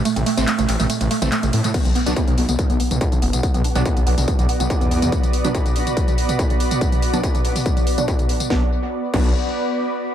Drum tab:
CC |----------------|x---------------|----------------|----------------|
RD |xxxxxxxxxxxxxxxx|----------------|----------------|----------------|
HH |xxoxxxooxxoxxxox|xxoxxxoxxxoxxxox|xxoxxxooxxoxxxox|xxoxxxoxxxoxxxox|
TB |xx-xxx-xxx-xxx-x|-x-xxx-xxx-xxx-x|xx-xxx-xxx-xxx-x|xx-xxx-xxx-xxx-x|
CP |----x-x-----x---|----------------|----------------|----------------|
SD |----------------|----------------|----------------|----------------|
T2 |-o-o-o-o-o-o-o-o|-o-o-o-o-o-o-o-o|-o-o-o-o-o-o-o-o|-o-o-o-o-o-o-o-o|
BD |----------------|o---o---o---o---|o---o---o---o---|o---o---o---o---|

CC |----------------|------x---------|
RD |----------------|----------------|
HH |xxoxxxooxxoxxxox|----------------|
TB |xx-xxx-xxx-xxx-x|----------------|
CP |----------------|----------------|
SD |----------------|o---------------|
T2 |-o-o-o-o-o-o-o-o|----------------|
BD |o---o---o---o---|o-----o---------|